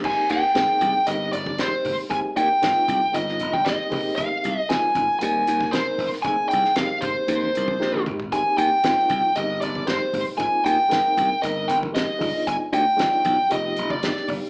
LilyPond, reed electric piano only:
\new Staff \with { instrumentName = "Reed electric piano" } { \time 4/4 \key aes \lydian \tempo 4 = 116 <aes bes c' ees' g'>4 <aes bes c' ees' aes'>4 <aes bes c' ees' g'>4 <aes bes c' ees' g'>4 | <aes bes c' ees' g'>4 <aes bes c' ees' f'>4 <aes bes c' ees' f'>4 <aes bes c' ees' g'>8 <aes bes c' ees' g'>8~ | <aes bes c' ees' g'>4 <aes bes c' ees' f'>4 <g aes bes c' ees'>4 <aes bes c' ees' bes'>4 | <aes bes c' ees' aes'>4 <aes bes c' ees' g'>4 <aes bes c' ees' bes'>4 <aes bes c' ees' g'>4 |
<aes bes c' ees' g'>4 <aes bes c' ees' f'>4 <aes bes c' ees' g'>4 <aes bes c' ees' g'>4 | <aes bes c' ees' f'>4 <aes bes c' ees' bes'>4 <aes bes c' ees' bes'>4 <aes bes c' ees' g'>8 <aes b d' ees' f'>8~ | <aes b d' ees' f'>4 <aes b d' ees' f'>4 <aes b ees' f' g'>4 <aes b d' ees' g'>4 | }